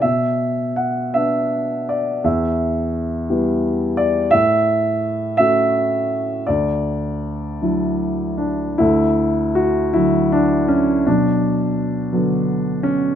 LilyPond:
<<
  \new Staff \with { instrumentName = "Grand piano" } { \time 6/8 \key d \major \tempo 4. = 55 e''4 fis''8 e''4 d''8 | e''2 r8 d''8 | e''4. e''4. | d''2 r8 d'8 |
e'4 fis'8 e'8 d'8 cis'8 | d'2 r8 cis'8 | }
  \new Staff \with { instrumentName = "Grand piano" } { \clef bass \time 6/8 \key d \major << { r2. | r2. | r2. | r2. |
a4. r4. | fis2 r4 | } \\ { b,4. <b d'>4. | e,4. <g b e'>4. | a,4. <a cis' fis'>4. | d,4. <fis d' e'>4. |
d,4. <d fis>4. | b,4. <d fis b>4. | } >> }
>>